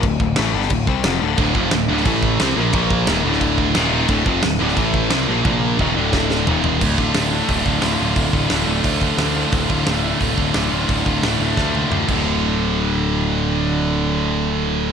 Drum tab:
CC |x---x---x---x---|x---x---x---x---|x---x---x---x---|x---x---x---x---|
HH |----------------|----------------|----------------|----------------|
SD |----o--o----o---|----o--o----o---|----o--o----o---|----o--o----o---|
T1 |----------------|----------------|----------------|----------------|
T2 |----------------|----------------|----------------|----------------|
FT |----------------|----------------|----------------|----------------|
BD |o-o-----o-o-----|o-o-----o-o-----|o-o-----o-o-----|o-o-----o-o-----|

CC |----------------|x---------------|----------------|----------------|
HH |----------------|----o---o---o---|o---o---o---o---|o---o---o---o---|
SD |--------o-o-----|----o-------o---|----o-------o---|----o-------o---|
T1 |o---------------|----------------|----------------|----------------|
T2 |----------------|----------------|----------------|----------------|
FT |------------o-o-|----------------|----------------|----------------|
BD |o---o---o-------|o-o-----o-o-----|o-o-----o-o-----|o-o-----o-o-----|

CC |--------------x-|----------------|----------------|
HH |o---o-----------|----------------|----------------|
SD |----o---o-------|----------------|----------------|
T1 |----------o-----|----------------|----------------|
T2 |------------o---|----------------|----------------|
FT |----------------|----------------|----------------|
BD |o-o-----o-----o-|----------------|----------------|